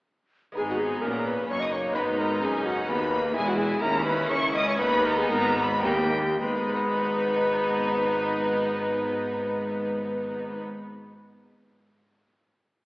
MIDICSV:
0, 0, Header, 1, 8, 480
1, 0, Start_track
1, 0, Key_signature, 5, "minor"
1, 0, Tempo, 463320
1, 602, Time_signature, 3, 2, 24, 8
1, 3957, Tempo, 498339
1, 5397, Tempo, 536193
1, 5877, Tempo, 569801
1, 11773, End_track
2, 0, Start_track
2, 0, Title_t, "Violin section"
2, 0, Program_c, 0, 48
2, 593, Note_on_c, 0, 80, 93
2, 709, Note_on_c, 0, 78, 83
2, 710, Note_off_c, 0, 80, 0
2, 832, Note_on_c, 0, 80, 80
2, 836, Note_off_c, 0, 78, 0
2, 1068, Note_on_c, 0, 82, 92
2, 1073, Note_off_c, 0, 80, 0
2, 1309, Note_on_c, 0, 83, 94
2, 1316, Note_off_c, 0, 82, 0
2, 1557, Note_off_c, 0, 83, 0
2, 1561, Note_on_c, 0, 85, 112
2, 1677, Note_on_c, 0, 87, 85
2, 1681, Note_off_c, 0, 85, 0
2, 1781, Note_on_c, 0, 85, 91
2, 1801, Note_off_c, 0, 87, 0
2, 1864, Note_off_c, 0, 85, 0
2, 2016, Note_on_c, 0, 83, 104
2, 2099, Note_off_c, 0, 83, 0
2, 2251, Note_on_c, 0, 82, 94
2, 2499, Note_off_c, 0, 82, 0
2, 2512, Note_on_c, 0, 80, 99
2, 2753, Note_off_c, 0, 80, 0
2, 2759, Note_on_c, 0, 78, 96
2, 2989, Note_on_c, 0, 83, 114
2, 2990, Note_off_c, 0, 78, 0
2, 3469, Note_off_c, 0, 83, 0
2, 3475, Note_on_c, 0, 80, 112
2, 3592, Note_off_c, 0, 80, 0
2, 3598, Note_on_c, 0, 78, 91
2, 3711, Note_on_c, 0, 80, 98
2, 3716, Note_off_c, 0, 78, 0
2, 3950, Note_on_c, 0, 82, 111
2, 3952, Note_off_c, 0, 80, 0
2, 4181, Note_off_c, 0, 82, 0
2, 4185, Note_on_c, 0, 83, 107
2, 4415, Note_on_c, 0, 85, 127
2, 4418, Note_off_c, 0, 83, 0
2, 4653, Note_off_c, 0, 85, 0
2, 4658, Note_on_c, 0, 87, 125
2, 4777, Note_off_c, 0, 87, 0
2, 4783, Note_on_c, 0, 85, 119
2, 4831, Note_off_c, 0, 85, 0
2, 4903, Note_on_c, 0, 83, 127
2, 5143, Note_off_c, 0, 83, 0
2, 5167, Note_on_c, 0, 82, 97
2, 5275, Note_on_c, 0, 80, 100
2, 5281, Note_off_c, 0, 82, 0
2, 5383, Note_on_c, 0, 82, 121
2, 5396, Note_off_c, 0, 80, 0
2, 5627, Note_off_c, 0, 82, 0
2, 5636, Note_on_c, 0, 83, 115
2, 5869, Note_on_c, 0, 79, 110
2, 5878, Note_off_c, 0, 83, 0
2, 6352, Note_off_c, 0, 79, 0
2, 6357, Note_on_c, 0, 83, 96
2, 9879, Note_off_c, 0, 83, 0
2, 11773, End_track
3, 0, Start_track
3, 0, Title_t, "Recorder"
3, 0, Program_c, 1, 74
3, 594, Note_on_c, 1, 68, 90
3, 650, Note_off_c, 1, 68, 0
3, 725, Note_on_c, 1, 66, 68
3, 825, Note_on_c, 1, 68, 72
3, 840, Note_off_c, 1, 66, 0
3, 1052, Note_on_c, 1, 70, 78
3, 1068, Note_off_c, 1, 68, 0
3, 1305, Note_on_c, 1, 71, 76
3, 1320, Note_off_c, 1, 70, 0
3, 1527, Note_off_c, 1, 71, 0
3, 1533, Note_on_c, 1, 73, 85
3, 1658, Note_on_c, 1, 75, 78
3, 1674, Note_off_c, 1, 73, 0
3, 1788, Note_on_c, 1, 73, 89
3, 1803, Note_off_c, 1, 75, 0
3, 2025, Note_off_c, 1, 73, 0
3, 2031, Note_on_c, 1, 71, 94
3, 2278, Note_on_c, 1, 70, 82
3, 2294, Note_off_c, 1, 71, 0
3, 2504, Note_off_c, 1, 70, 0
3, 2510, Note_on_c, 1, 68, 84
3, 2755, Note_on_c, 1, 66, 73
3, 2770, Note_off_c, 1, 68, 0
3, 2985, Note_off_c, 1, 66, 0
3, 2991, Note_on_c, 1, 71, 74
3, 3461, Note_off_c, 1, 71, 0
3, 3470, Note_on_c, 1, 68, 95
3, 3525, Note_off_c, 1, 68, 0
3, 3589, Note_on_c, 1, 66, 84
3, 3691, Note_off_c, 1, 66, 0
3, 3697, Note_on_c, 1, 68, 92
3, 3950, Note_on_c, 1, 70, 92
3, 3965, Note_off_c, 1, 68, 0
3, 4167, Note_off_c, 1, 70, 0
3, 4173, Note_on_c, 1, 71, 94
3, 4411, Note_off_c, 1, 71, 0
3, 4416, Note_on_c, 1, 73, 98
3, 4474, Note_off_c, 1, 73, 0
3, 4652, Note_on_c, 1, 75, 113
3, 4779, Note_on_c, 1, 73, 100
3, 4794, Note_off_c, 1, 75, 0
3, 4895, Note_on_c, 1, 71, 123
3, 4910, Note_off_c, 1, 73, 0
3, 5139, Note_on_c, 1, 70, 106
3, 5153, Note_off_c, 1, 71, 0
3, 5267, Note_on_c, 1, 68, 94
3, 5281, Note_off_c, 1, 70, 0
3, 5385, Note_off_c, 1, 68, 0
3, 5391, Note_on_c, 1, 70, 92
3, 5611, Note_off_c, 1, 70, 0
3, 5616, Note_on_c, 1, 71, 90
3, 5673, Note_off_c, 1, 71, 0
3, 5861, Note_on_c, 1, 67, 70
3, 6339, Note_off_c, 1, 67, 0
3, 6346, Note_on_c, 1, 71, 86
3, 9874, Note_off_c, 1, 71, 0
3, 11773, End_track
4, 0, Start_track
4, 0, Title_t, "Violin section"
4, 0, Program_c, 2, 48
4, 601, Note_on_c, 2, 63, 61
4, 1050, Note_off_c, 2, 63, 0
4, 1077, Note_on_c, 2, 61, 60
4, 1560, Note_on_c, 2, 63, 77
4, 1562, Note_off_c, 2, 61, 0
4, 3469, Note_off_c, 2, 63, 0
4, 3474, Note_on_c, 2, 64, 74
4, 3944, Note_off_c, 2, 64, 0
4, 3956, Note_on_c, 2, 64, 79
4, 4883, Note_off_c, 2, 64, 0
4, 4907, Note_on_c, 2, 63, 91
4, 5868, Note_off_c, 2, 63, 0
4, 5878, Note_on_c, 2, 63, 73
4, 5946, Note_off_c, 2, 63, 0
4, 6355, Note_on_c, 2, 63, 77
4, 9878, Note_off_c, 2, 63, 0
4, 11773, End_track
5, 0, Start_track
5, 0, Title_t, "Lute"
5, 0, Program_c, 3, 24
5, 539, Note_on_c, 3, 56, 54
5, 555, Note_on_c, 3, 59, 45
5, 567, Note_on_c, 3, 63, 46
5, 587, Note_on_c, 3, 68, 54
5, 602, Note_on_c, 3, 44, 50
5, 1037, Note_off_c, 3, 56, 0
5, 1042, Note_off_c, 3, 44, 0
5, 1045, Note_off_c, 3, 59, 0
5, 1051, Note_off_c, 3, 63, 0
5, 1083, Note_on_c, 3, 46, 54
5, 1523, Note_off_c, 3, 46, 0
5, 1569, Note_on_c, 3, 42, 58
5, 1985, Note_on_c, 3, 56, 58
5, 1995, Note_off_c, 3, 68, 0
5, 2002, Note_on_c, 3, 59, 53
5, 2004, Note_off_c, 3, 42, 0
5, 2018, Note_on_c, 3, 63, 52
5, 2033, Note_on_c, 3, 66, 54
5, 2050, Note_on_c, 3, 44, 56
5, 2481, Note_off_c, 3, 44, 0
5, 2515, Note_on_c, 3, 42, 59
5, 2950, Note_off_c, 3, 42, 0
5, 2997, Note_on_c, 3, 39, 61
5, 3401, Note_off_c, 3, 56, 0
5, 3409, Note_off_c, 3, 59, 0
5, 3417, Note_off_c, 3, 63, 0
5, 3425, Note_off_c, 3, 66, 0
5, 3425, Note_on_c, 3, 59, 57
5, 3431, Note_off_c, 3, 39, 0
5, 3440, Note_on_c, 3, 64, 55
5, 3457, Note_on_c, 3, 68, 59
5, 3473, Note_on_c, 3, 40, 65
5, 3917, Note_off_c, 3, 40, 0
5, 3920, Note_off_c, 3, 59, 0
5, 3951, Note_on_c, 3, 39, 65
5, 4380, Note_on_c, 3, 58, 56
5, 4382, Note_off_c, 3, 64, 0
5, 4383, Note_off_c, 3, 39, 0
5, 4390, Note_off_c, 3, 68, 0
5, 4393, Note_on_c, 3, 64, 63
5, 4410, Note_on_c, 3, 68, 60
5, 4856, Note_off_c, 3, 58, 0
5, 4859, Note_on_c, 3, 59, 60
5, 4868, Note_off_c, 3, 64, 0
5, 4871, Note_on_c, 3, 63, 64
5, 4877, Note_off_c, 3, 68, 0
5, 4889, Note_on_c, 3, 68, 58
5, 4904, Note_on_c, 3, 39, 66
5, 5359, Note_off_c, 3, 39, 0
5, 5394, Note_on_c, 3, 44, 70
5, 5828, Note_off_c, 3, 59, 0
5, 5832, Note_off_c, 3, 63, 0
5, 5832, Note_on_c, 3, 61, 55
5, 5839, Note_off_c, 3, 44, 0
5, 5842, Note_off_c, 3, 68, 0
5, 5842, Note_on_c, 3, 63, 60
5, 5854, Note_on_c, 3, 70, 61
5, 5873, Note_on_c, 3, 39, 70
5, 6320, Note_off_c, 3, 39, 0
5, 6320, Note_off_c, 3, 61, 0
5, 6325, Note_off_c, 3, 63, 0
5, 6330, Note_off_c, 3, 70, 0
5, 6350, Note_on_c, 3, 56, 61
5, 6408, Note_on_c, 3, 59, 54
5, 6469, Note_on_c, 3, 63, 57
5, 6523, Note_on_c, 3, 68, 52
5, 6584, Note_on_c, 3, 71, 62
5, 6640, Note_off_c, 3, 71, 0
5, 6643, Note_on_c, 3, 75, 63
5, 10278, Note_off_c, 3, 56, 0
5, 10336, Note_off_c, 3, 59, 0
5, 10396, Note_off_c, 3, 63, 0
5, 10451, Note_off_c, 3, 68, 0
5, 10571, Note_off_c, 3, 75, 0
5, 11773, End_track
6, 0, Start_track
6, 0, Title_t, "Viola section"
6, 0, Program_c, 4, 48
6, 602, Note_on_c, 4, 59, 68
6, 1523, Note_off_c, 4, 59, 0
6, 1547, Note_on_c, 4, 58, 73
6, 2025, Note_off_c, 4, 58, 0
6, 2038, Note_on_c, 4, 59, 72
6, 2508, Note_on_c, 4, 61, 68
6, 2516, Note_off_c, 4, 59, 0
6, 2985, Note_on_c, 4, 59, 78
6, 2988, Note_off_c, 4, 61, 0
6, 3217, Note_on_c, 4, 58, 74
6, 3227, Note_off_c, 4, 59, 0
6, 3459, Note_off_c, 4, 58, 0
6, 3461, Note_on_c, 4, 56, 75
6, 3944, Note_on_c, 4, 61, 74
6, 3953, Note_off_c, 4, 56, 0
6, 4878, Note_off_c, 4, 61, 0
6, 4899, Note_on_c, 4, 59, 97
6, 5875, Note_off_c, 4, 59, 0
6, 5879, Note_on_c, 4, 58, 83
6, 6149, Note_off_c, 4, 58, 0
6, 6356, Note_on_c, 4, 59, 81
6, 9879, Note_off_c, 4, 59, 0
6, 11773, End_track
7, 0, Start_track
7, 0, Title_t, "Cello section"
7, 0, Program_c, 5, 48
7, 603, Note_on_c, 5, 44, 74
7, 1051, Note_off_c, 5, 44, 0
7, 1077, Note_on_c, 5, 46, 71
7, 1552, Note_off_c, 5, 46, 0
7, 1558, Note_on_c, 5, 42, 74
7, 2031, Note_off_c, 5, 42, 0
7, 2031, Note_on_c, 5, 44, 70
7, 2503, Note_off_c, 5, 44, 0
7, 2516, Note_on_c, 5, 42, 66
7, 2984, Note_on_c, 5, 39, 73
7, 2992, Note_off_c, 5, 42, 0
7, 3457, Note_off_c, 5, 39, 0
7, 3468, Note_on_c, 5, 40, 75
7, 3946, Note_off_c, 5, 40, 0
7, 3955, Note_on_c, 5, 39, 85
7, 4414, Note_off_c, 5, 39, 0
7, 4421, Note_on_c, 5, 37, 82
7, 4892, Note_off_c, 5, 37, 0
7, 4895, Note_on_c, 5, 39, 87
7, 5383, Note_off_c, 5, 39, 0
7, 5394, Note_on_c, 5, 44, 99
7, 5866, Note_off_c, 5, 44, 0
7, 5870, Note_on_c, 5, 39, 83
7, 6351, Note_on_c, 5, 44, 79
7, 6353, Note_off_c, 5, 39, 0
7, 9876, Note_off_c, 5, 44, 0
7, 11773, End_track
8, 0, Start_track
8, 0, Title_t, "Double bass section"
8, 0, Program_c, 6, 48
8, 587, Note_on_c, 6, 32, 84
8, 1042, Note_off_c, 6, 32, 0
8, 1076, Note_on_c, 6, 34, 73
8, 1552, Note_off_c, 6, 34, 0
8, 1558, Note_on_c, 6, 30, 76
8, 2030, Note_off_c, 6, 30, 0
8, 2036, Note_on_c, 6, 32, 86
8, 2506, Note_off_c, 6, 32, 0
8, 2508, Note_on_c, 6, 30, 78
8, 2984, Note_on_c, 6, 39, 83
8, 2988, Note_off_c, 6, 30, 0
8, 3457, Note_off_c, 6, 39, 0
8, 3463, Note_on_c, 6, 28, 86
8, 3944, Note_off_c, 6, 28, 0
8, 3950, Note_on_c, 6, 39, 94
8, 4411, Note_off_c, 6, 39, 0
8, 4415, Note_on_c, 6, 37, 94
8, 4889, Note_off_c, 6, 37, 0
8, 4897, Note_on_c, 6, 39, 101
8, 5384, Note_off_c, 6, 39, 0
8, 5388, Note_on_c, 6, 32, 99
8, 5863, Note_off_c, 6, 32, 0
8, 5879, Note_on_c, 6, 39, 99
8, 6351, Note_on_c, 6, 32, 87
8, 6357, Note_off_c, 6, 39, 0
8, 9876, Note_off_c, 6, 32, 0
8, 11773, End_track
0, 0, End_of_file